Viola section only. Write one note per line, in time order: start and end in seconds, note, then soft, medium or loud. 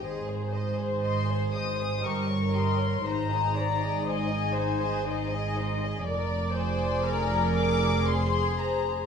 0.04 0.52 G#4 soft
0.53 2.02 C5 medium
2.05 3.06 A#4 medium
3.06 3.56 C5 medium
3.57 4.07 D5 medium
4.07 4.55 D#5 medium
4.56 5.06 C5 medium
5.06 6.06 D#5 medium
6.06 6.55 D5 medium
6.55 7.05 C5 medium
7.04 8.06 A#4 medium
8.06 9.06 G#4 medium